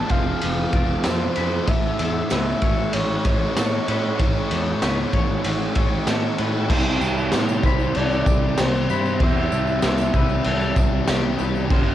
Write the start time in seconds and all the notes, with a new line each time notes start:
Already playing: F2 A3 C4 F4 A4 B4 A5
0.09 F1 F3 A3 C5 F5, kick, ride
0.42 F1 F3 C4 F5, ride
0.73 F1 A3 C4 D5, kick, ride
1.04 F2 A3 F4 A4 C5, snare, ride, tambourine
1.36 F2 C4 F4 B5, ride
1.67 A1 A2 A4 C#5 E5 C#6, kick, ride
1.99 E2 A3 A4, ride
2.30 C#2 A3 C#4 B4 E5, snare, ride, tambourine
2.62 A1 E3 A3 C#5, kick, ride
2.93 A1 E3 C#4 C#5, ride
3.25 A1 A3 C#4 C#5, kick, ride
3.57 A2 A3 E4 A4, snare, ride, tambourine
3.88 A2 C#4 E4 B4, ride
4.18 A1 A2 F#5, kick, ride
4.51 E2 A3 A4, ride
4.82 C#2 A3 C#4 B4, snare, ride, tambourine
5.13 A1 E3 A3 C#5, kick, ride
5.44 A1 E3 C#4, ride
5.75 A1 A3 C#4 C#5, kick, ride
6.06 A2 A3 E4 A4, snare, ride, tambourine
6.38 A2 C#4 E4 B4, ride
6.69 C2 C3 E3 G3 C4 E4 G4 C5 E5 G5, kick, crash
7.01 C2, tambourine
7.17 tambourine
7.31 A2 C3 G3 C4 C5, snare, tambourine, crash
7.49 tambourine
7.63 C2 G3 C4 C5 B5, kick, tambourine
7.79 tambourine
7.95 C2 A4 D5, crash
8.11 tambourine
8.26 C2 G3 C4, kick, tambourine
8.57 C2 C3 G3 C4 G4 C5, snare, tambourine, crash
8.74 tambourine
8.90 G2 C5 B5, tambourine
9.06 tambourine
9.19 E2 C3 E3 G3 C4 E4 G4 C5 E5, kick, crash
9.52 C2, tambourine
9.67 tambourine
9.82 C2 C3 G3 C4 C5, snare, tambourine, crash
9.98 tambourine
10.14 C2 G3 C4 B4, kick, tambourine
10.29 tambourine
10.44 C2 A4, crash
10.61 tambourine
10.76 C2 G3 C4, kick, tambourine
11.07 C2 C3 G3 C4 G4, snare, tambourine, crash
11.39 C2 B4, tambourine
11.55 tambourine
11.70 G1 G2 D3 G3 A#3 D4 G4 C5 A5 D6, kick, crash